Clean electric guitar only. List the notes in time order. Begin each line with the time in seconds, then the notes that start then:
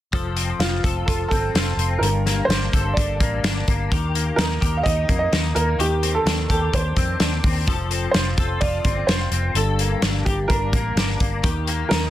0.14 F3 A4
0.36 C4
0.61 F4
0.84 A4
1.08 F4
1.31 C4
1.55 F4
1.79 C4
2.03 G2
2.26 A#3
2.50 D4
2.74 A4
2.98 D4
3.21 A#3
3.44 D4
3.68 A#3
3.92 D#3 G4
4.15 A#3
4.39 D#4
4.61 G4
4.86 D#4
5.09 A#3
5.32 D#4
5.56 A#3
5.79 D#3 G4
6.03 C4
6.26 D4
6.50 G4
6.74 D4
6.97 C4
7.21 D4
7.45 C4
7.68 F3 A4
7.92 C4
8.15 F4
8.39 A4
8.62 F4
8.85 C4
9.10 F4
9.33 C4
9.56 G2 A4
9.81 A#3
10.03 D4
10.28 G4
10.50 D4
10.74 A#3
10.97 D4
11.21 A#3
11.43 D#3 G4
11.68 A#3
11.92 D#4